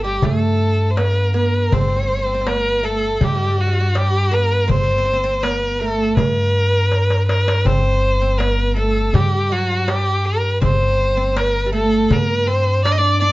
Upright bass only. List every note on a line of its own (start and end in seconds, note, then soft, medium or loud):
0.00 0.19 G1 medium
0.23 1.67 G2 medium
1.72 3.16 G1 medium
3.21 4.65 G2 medium
4.70 6.13 G1 medium
6.17 7.61 G2 medium
7.65 9.10 G1 medium
9.13 10.58 G2 medium
10.62 12.06 G1 loud
12.10 13.32 G2 medium